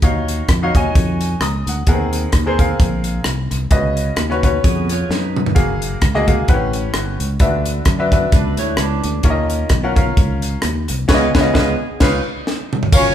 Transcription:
0.02 D#2 D#3 D#4 F#4 C#5 F5, kick, closed hi-hat
0.28 closed hi-hat
0.49 F2, kick, cross-stick, closed hi-hat
0.63 D#4 F#4 C#5 F5
0.74 D#2 D#4 F#4 C#5 G#5, kick, closed hi-hat
0.95 F2, kick, closed hi-hat
1.21 closed hi-hat
1.40 C#2 A#5 D#6, cross-stick, closed hi-hat
1.67 D2 F#5, closed hi-hat
1.87 D#2 D#3 B3 G#4 A#4 F#5, kick, closed hi-hat
1.93 C4
2.13 closed hi-hat
2.32 D#2, kick, cross-stick, closed hi-hat
2.46 C4 G#4 A#4 C5
2.58 C4 G#4 A#4 F5, kick, closed hi-hat
2.79 A#1, kick, closed hi-hat
3.04 closed hi-hat
3.24 C2, cross-stick, closed hi-hat
3.51 C2, cross-stick, closed hi-hat
3.71 C#2 C#3 C#4 F#4 B4 D#5, kick, closed hi-hat
3.97 closed hi-hat
4.17 D#2, cross-stick, closed hi-hat
4.30 C#4 F#4 B4 C#5, cross-stick
4.43 C#4 F#4 B4 C#5, kick, closed hi-hat
4.64 F2 B3 G#4, kick, closed hi-hat
4.89 F4 C#5, closed hi-hat
5.09 F#2 D#4 B4, snare
5.36 mid tom
5.46 floor tom
5.55 F#1 A#3 F#4 G#4 F5, kick, closed hi-hat
5.82 closed hi-hat
6.01 C#2, kick, cross-stick, closed hi-hat
6.14 A#3 F#4 G#4 D#5, cross-stick
6.27 A#3 F#4 G#4 F5, kick, closed hi-hat
6.48 A1 A2 C4 G4 B4 F#5, kick, closed hi-hat
6.54 C#4
6.73 closed hi-hat
6.94 G1, cross-stick, closed hi-hat
7.20 C#2, closed hi-hat
7.40 D2 D3 D4 F4 B4 E5, kick, closed hi-hat
7.45 F#4
7.66 closed hi-hat
7.85 F#2, kick, cross-stick, closed hi-hat
7.99 D4 F#4 B4 E5
8.12 D4 F#4 B4 E5, kick, closed hi-hat
8.32 C#2 D4 B4, kick, closed hi-hat
8.57 D2 E4 C#5, closed hi-hat
8.77 C#2 D4 B4, cross-stick, closed hi-hat
9.04 D2, closed hi-hat
9.23 D#2 D#3 C#4 F4 A#4 C#5, kick, closed hi-hat
9.30 D#5
9.50 closed hi-hat
9.69 B1, kick, cross-stick, closed hi-hat
9.84 C#4 F4 A#4 F#5
9.96 C#4 F4 A#4 F5, kick, closed hi-hat
10.17 C#2, kick, closed hi-hat
10.42 closed hi-hat
10.62 D#2, cross-stick, closed hi-hat
10.88 C2, cross-stick, closed hi-hat
11.08 C#2 C#3 B3 C#4 F4 G#4 B4 C#5, kick, snare, crash
11.14 D#5
11.34 C#2 C#3 B3 C#4 F4 G#4 B4 C#5, kick, snare
11.41 D#5
11.54 C#2 B3 C#4 F4 G#4 B4 D#5, kick, snare
12.00 C#2 C#4 D#4 F4 B4 F5, kick, snare, crash
12.47 snare
12.73 mid tom
12.83 floor tom
12.92 F#1 F#3 C#4 F4 A#4 C#5 F5, kick, crash, tambourine

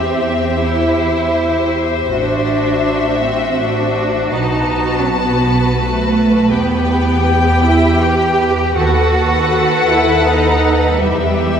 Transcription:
Already playing: E2 C4 G4 C5 E5
0.61 E4
2.11 A1 D4 F#4 E5
3.23 C4
3.60 D4
4.32 B1 D#4 B4 A5
5.05 B3
5.78 A3
6.53 E2 B3 G4 G5
7.66 E4
8.02 G4
8.76 D#2 F#4 A4 B4 F#5
9.88 E4
10.25 D#4
11.00 E2 G3 G4 E5

